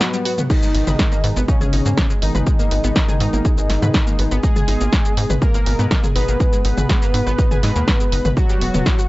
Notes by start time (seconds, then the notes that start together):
Already playing: G#2 B2 F#3 B3 F#4
0.01 F#3 F#4, snare, shaker
0.13 G3 G4, shaker
0.25 F#4 F#5, open hi-hat
0.38 B3 B4, mid tom, shaker
0.50 G#2 B2 D#3 G#3 D#4 G#4, kick, crash, shaker
0.63 G#3 G#4, shaker
0.75 G#1 D#4 D#5, open hi-hat
0.87 G#1 B4 B5, mid tom, shaker
0.99 G#3 G#4, kick, snare, shaker
1.12 A#3 A#4, shaker
1.24 G#2 B3 B4, open hi-hat
1.36 G#1 B3 B4, shaker
1.48 C#3 C#4 D#4 D#5, kick, shaker
1.61 G#1 G#4 G#5, mid tom, shaker
1.73 G#1 D#4 D#5, open hi-hat
1.86 G#2 A#3 A#4, shaker
1.97 G#3 G#4, kick, snare, shaker
2.10 G#3 G#4, shaker
2.22 G#1 D#3 D#4 D#5, open hi-hat
2.35 G#1 B4 B5, mid tom, shaker
2.47 G#3 G#4, kick, shaker
2.59 A#3 A#4, shaker
2.71 G#1 B3 B4, open hi-hat
2.84 G#1 B3 B4, shaker
2.96 D#4 D#5, kick, snare, shaker
3.09 G#4 G#5, mid tom, shaker
3.20 G#2 D#4 D#5, open hi-hat
3.33 G#1 A#3 A#4, shaker
3.45 G#3 G#4, kick, shaker
3.58 G#1 G#3 G#4, shaker
3.70 G#1 D#4 D#5, snare, open hi-hat
3.82 G#2 B4 B5, mid tom, shaker
3.94 G#3 G#4, kick, snare, shaker
4.07 A#3 A#4, shaker
4.19 G#1 B3 B4, open hi-hat
4.31 G#1 B3 B4, shaker
4.43 G#3 D#4 G#4 D#5, kick, shaker
4.56 G#4 G#5, mid tom, shaker
4.68 G#1 D#4 D#5, open hi-hat
4.81 G#1 A#3 A#4, shaker
4.93 G#3 G#4, kick, snare, shaker
5.05 G#3 G#4, shaker
5.17 G#2 D#4 D#5, open hi-hat
5.30 G#1 B4 B5, mid tom, shaker
5.42 G#3 A#3 G#4 A#4, kick, shaker
5.54 G#1 A#3 A#4, shaker
5.66 G#1 B3 B4, open hi-hat
5.79 G#2 B3 B4, shaker
5.91 D#4 D#5, kick, snare, shaker
6.04 G#4 G#5, mid tom, shaker
6.15 G#1 B3 D#4 B4 D#5, open hi-hat
6.28 G#1 A#3 A#4, shaker
6.40 G#3 G#4, kick, shaker
6.53 G#3 G#4, shaker
6.65 G#1 D#4 D#5, open hi-hat
6.77 G#1 B4 B5, mid tom, shaker
6.89 G#3 G#4, kick, snare, shaker
7.02 A#3 A#4, shaker
7.14 G#2 B3 B4, open hi-hat
7.27 G#1 B3 B4, shaker
7.38 D#4 D#5, kick, shaker
7.51 G#1 G#4 G#5, mid tom, shaker
7.63 G#2 D#4 D#5, snare, open hi-hat
7.76 D#2 A#3 A#4, shaker
7.88 G#3 G#4, kick, snare, shaker
8.00 G#3 G#4, shaker
8.12 F#1 D#4 D#5, open hi-hat
8.25 G#1 B4 B5, mid tom, shaker
8.37 F#3 F#4, kick, shaker
8.50 G3 G4, shaker
8.61 E1 B3 B4, open hi-hat
8.74 E1 B3 B4, mid tom, shaker
8.86 E4 E5, kick, snare, shaker
8.99 F#4 F#5, shaker